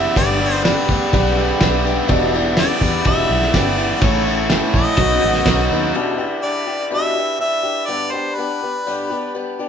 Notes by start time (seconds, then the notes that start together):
Already playing: E3 G3 B3 D4 E4 G4 B4 D5 E5 G5
0.15 G1 G2 D3 G3 B3 D4 G4 B4 D5 B5, kick, ride bell, tambourine
0.39 G3 B3 D4 G4
0.53 C5
0.64 G3 B3 D4 G4 B4 D5, snare, ride bell, tambourine
0.88 D2 G3 B3 D4 G4, kick, tambourine
1.12 B1 G2 D3 G3 B3 D4 G4 B4 D5, kick, ride bell
1.37 G3 B3 D4 G4 G5, tambourine
1.61 B1 G3 B3 D4 G4 B4 E5 B5, kick, snare, ride bell, tambourine
1.84 G3 B3 D4 G4, tambourine
2.08 E1 E2 B2 E3 G3 D4 E4 G4 D5 E5 G5, kick, ride bell, tambourine
2.12 B3
2.33 E3 G3 B3 D4 E4, tambourine
2.57 E3 G3 B3 D4 E4 G4 D5 E5, snare, ride bell, tambourine
2.81 E2 E3 G3 B3 D4 E4, kick, tambourine
3.05 E1 E2 B2 E3 G3 B3 D4 E4 G4 D5 E5, kick, ride bell
3.29 B1 E3 G3 B3 D4 E4, tambourine
3.42 snare
3.54 G1 E3 G3 B3 D4 E4 G4 D5 G5, kick, snare, ride bell, tambourine
3.78 E3 G3 D4 E4, tambourine
4.01 A1 A2 E3 A3 C#4 E4 A4 C#5 E5 A5, kick, ride bell, tambourine
4.25 A3 C#4 E4, tambourine
4.50 E3 A3 C#4 E4 A4 C#5 G5, snare, ride bell, tambourine
4.73 A#1 A3 C#4 E4 D#5, kick, tambourine
4.97 B1 B2 F#3 B3 D#4 F#4 B4 D#5 B5, kick, ride bell, tambourine
5.21 A1 B3 D#4 F#4
5.33 snare
5.45 B1 F#3 B3 D#4 F#4 B4 D#5, kick, snare, ride bell, tambourine
5.70 D#2 B3 D#4 F#4, tambourine
5.94 E2 B2 E3 G3 D4 G4 D5 E5 B5
6.18 E3 G3 D4 G4
6.42 E3 G3 D4 G4 D5
6.66 E3 G3 D4 G4
6.91 E2 B2 E3 G3 D4 G4 E5
7.16 E3 G3 D4 G4
7.38 E3 G3 D4 G4 E5
7.63 E3 G3 D4 G4
7.87 G2 D3 G3 B3 D4 G4 B4 D5
8.11 G3 B3 D4 G4 C5
8.35 G3 B3 B4
8.39 D4 G4
8.61 G3 B3 D4 G4
8.87 G2 D3 G3 B3 D4 G4
9.10 G3 B3 D4 G4
9.35 G3 B3 D4 G4
9.59 G3 B3 D4 G4